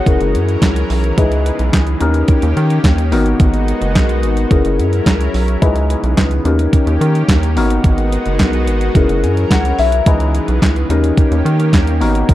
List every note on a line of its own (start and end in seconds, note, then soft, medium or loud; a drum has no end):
0.00 0.19 C#5 medium
0.00 0.19 F#5 medium
0.06 0.18 F#1 loud
0.06 1.99 E3 medium
0.06 1.16 F#3 medium
0.06 1.15 C#4 medium
0.06 1.16 C#4 medium
0.06 1.15 E4 medium
0.06 1.15 G#4 medium
0.06 1.16 A#4 medium
0.06 kick loud
0.06 closed hi-hat medium
0.21 0.36 F#1 loud
0.21 closed hi-hat medium
0.35 0.57 F#2 loud
0.35 closed hi-hat medium
0.49 closed hi-hat medium
0.62 0.84 C#2 medium
0.62 kick loud
0.62 snare loud
0.62 clap loud
0.62 closed hi-hat loud
0.76 closed hi-hat medium
0.90 1.12 B1 medium
0.90 open hi-hat medium
1.04 closed hi-hat medium
1.17 1.51 C#2 loud
1.17 2.00 C#3 medium
1.17 2.00 G#3 medium
1.17 2.00 B3 medium
1.17 1.99 D#4 medium
1.17 2.01 E4 medium
1.17 2.01 G#4 medium
1.17 2.01 B4 medium
1.17 kick loud
1.17 closed hi-hat loud
1.32 closed hi-hat medium
1.46 closed hi-hat medium
1.59 1.71 B1 medium
1.59 closed hi-hat medium
1.73 1.96 C#2 medium
1.73 kick loud
1.73 snare loud
1.73 clap loud
1.73 closed hi-hat medium
1.87 closed hi-hat medium
2.00 2.23 D#2 loud
2.00 3.11 D#3 medium
2.00 3.11 A#3 medium
2.00 3.09 C#4 medium
2.00 3.11 C#4 medium
2.00 3.10 D#4 medium
2.00 3.11 G4 medium
2.00 3.10 G4 medium
2.00 3.10 A#4 loud
2.00 closed hi-hat medium
2.14 closed hi-hat medium
2.28 kick loud
2.28 closed hi-hat loud
2.42 2.54 D#2 loud
2.42 closed hi-hat medium
2.57 2.79 D#3 loud
2.57 closed hi-hat medium
2.70 closed hi-hat medium
2.84 3.14 D#2 medium
2.84 kick loud
2.84 snare loud
2.84 clap loud
2.84 closed hi-hat loud
2.98 closed hi-hat medium
3.12 3.34 G#1 loud
3.12 4.50 G#3 medium
3.12 4.48 B3 medium
3.12 4.50 B3 medium
3.12 4.48 D#4 medium
3.12 4.50 D#4 medium
3.12 4.50 F#4 medium
3.12 4.49 F#4 medium
3.12 4.49 A#4 medium
3.12 open hi-hat medium
3.26 closed hi-hat medium
3.40 3.73 G#1 loud
3.40 kick loud
3.40 closed hi-hat loud
3.54 closed hi-hat medium
3.68 closed hi-hat medium
3.81 3.97 F#1 medium
3.81 closed hi-hat medium
3.95 4.25 B1 medium
3.95 kick loud
3.95 snare loud
3.95 clap loud
3.95 closed hi-hat medium
4.09 closed hi-hat medium
4.23 4.46 G#1 medium
4.23 closed hi-hat medium
4.37 closed hi-hat medium
4.50 4.62 F#1 loud
4.50 5.61 F#3 medium
4.50 5.60 C#4 medium
4.50 5.61 C#4 medium
4.50 5.61 E4 medium
4.50 5.60 E4 medium
4.50 5.60 G#4 medium
4.50 5.61 A#4 medium
4.50 5.60 A#4 medium
4.50 kick loud
4.50 closed hi-hat medium
4.65 4.80 F#1 loud
4.65 closed hi-hat medium
4.79 5.01 F#2 loud
4.79 closed hi-hat medium
4.93 closed hi-hat medium
5.06 5.29 C#2 medium
5.06 kick loud
5.06 snare loud
5.06 clap loud
5.06 closed hi-hat loud
5.21 closed hi-hat medium
5.34 5.57 B1 medium
5.34 open hi-hat medium
5.48 closed hi-hat medium
5.62 5.96 C#2 loud
5.62 6.45 C#3 medium
5.62 6.44 E3 medium
5.62 6.45 G#3 medium
5.62 6.45 B3 medium
5.62 6.44 D#4 medium
5.62 6.45 E4 medium
5.62 6.45 G#4 medium
5.62 6.46 B4 medium
5.62 kick loud
5.62 closed hi-hat loud
5.76 closed hi-hat medium
5.90 closed hi-hat medium
6.03 6.15 B1 medium
6.03 closed hi-hat medium
6.17 6.40 C#2 medium
6.17 kick medium
6.17 snare loud
6.17 clap loud
6.17 closed hi-hat medium
6.31 closed hi-hat medium
6.45 6.67 D#2 loud
6.45 7.56 D#3 medium
6.45 7.56 A#3 medium
6.45 7.54 C#4 medium
6.45 7.56 C#4 medium
6.45 7.54 D#4 medium
6.45 7.56 G4 medium
6.45 7.54 G4 medium
6.45 7.55 A#4 medium
6.45 closed hi-hat medium
6.59 closed hi-hat medium
6.73 kick loud
6.73 closed hi-hat medium
6.87 6.98 D#2 loud
6.87 closed hi-hat medium
7.01 7.23 D#3 loud
7.01 closed hi-hat medium
7.15 closed hi-hat medium
7.29 7.58 D#2 medium
7.29 kick loud
7.29 snare loud
7.29 clap loud
7.29 closed hi-hat loud
7.43 closed hi-hat medium
7.56 7.79 G#1 loud
7.56 8.94 G#3 medium
7.56 8.94 B3 medium
7.56 8.92 B3 medium
7.56 8.94 D#4 medium
7.56 8.93 D#4 medium
7.56 8.94 F#4 medium
7.56 8.93 F#4 medium
7.56 8.93 A#4 medium
7.56 open hi-hat medium
7.70 closed hi-hat medium
7.84 8.18 G#1 loud
7.84 kick loud
7.84 closed hi-hat loud
7.98 closed hi-hat medium
8.12 closed hi-hat medium
8.26 8.41 F#1 medium
8.26 closed hi-hat medium
8.39 8.69 B1 medium
8.39 kick medium
8.39 snare loud
8.39 clap medium
8.39 closed hi-hat medium
8.53 closed hi-hat medium
8.67 8.90 G#1 loud
8.67 closed hi-hat medium
8.81 closed hi-hat medium
8.95 9.06 F#1 loud
8.95 10.88 E3 medium
8.95 10.05 F#3 medium
8.95 10.04 C#4 medium
8.95 10.05 C#4 medium
8.95 10.04 E4 medium
8.95 10.05 G#4 medium
8.95 10.05 A#4 medium
8.95 kick loud
8.95 closed hi-hat medium
9.09 9.24 F#1 loud
9.09 closed hi-hat soft
9.23 9.45 F#2 loud
9.23 9.49 G#5 medium
9.23 closed hi-hat medium
9.37 closed hi-hat soft
9.51 9.73 C#2 medium
9.51 9.77 F#5 medium
9.51 kick loud
9.51 snare loud
9.51 clap loud
9.51 closed hi-hat loud
9.65 closed hi-hat medium
9.79 10.01 B1 loud
9.79 10.05 E5 medium
9.79 open hi-hat medium
9.92 closed hi-hat medium
10.06 10.40 C#2 loud
10.06 10.89 C#3 medium
10.06 10.89 G#3 medium
10.06 10.89 B3 medium
10.06 10.89 D#4 medium
10.06 10.90 E4 medium
10.06 10.90 G#4 medium
10.06 10.90 B4 medium
10.06 kick loud
10.06 closed hi-hat loud
10.20 closed hi-hat medium
10.35 closed hi-hat medium
10.48 10.59 B1 medium
10.48 closed hi-hat soft
10.62 10.84 C#2 medium
10.62 kick loud
10.62 snare loud
10.62 clap loud
10.62 closed hi-hat medium
10.76 closed hi-hat medium
10.90 11.12 D#2 medium
10.90 12.00 D#3 medium
10.90 12.00 A#3 medium
10.90 11.99 C#4 medium
10.90 12.00 C#4 medium
10.90 11.99 D#4 medium
10.90 12.00 G4 medium
10.90 11.99 G4 medium
10.90 11.99 A#4 medium
10.90 closed hi-hat medium
11.04 closed hi-hat medium
11.17 kick loud
11.17 closed hi-hat medium
11.31 11.43 D#2 loud
11.31 closed hi-hat medium
11.45 11.74 D#3 loud
11.45 closed hi-hat medium
11.60 closed hi-hat medium
11.73 12.03 D#2 medium
11.73 kick loud
11.73 snare loud
11.73 clap loud
11.73 closed hi-hat loud
11.87 closed hi-hat medium
12.00 12.23 G#1 loud
12.00 12.34 G#3 medium
12.00 12.34 B3 medium
12.00 12.34 D#4 medium
12.00 12.34 F#4 medium
12.00 12.34 A#4 medium
12.00 open hi-hat medium
12.15 closed hi-hat medium
12.29 12.34 G#1 loud
12.29 kick loud
12.29 closed hi-hat loud